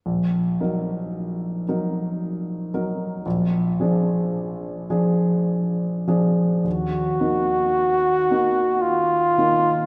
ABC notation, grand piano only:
X:1
M:3/4
L:1/8
Q:1/4=55
K:Ebm
V:1 name="Grand piano"
B,,, [G,EB]2 [G,EB]2 [G,EB] | B,,, [F,=DA]2 [F,DA]2 [F,DA] | E,, [E,B,E]2 [E,B,E]2 [E,B,E] |]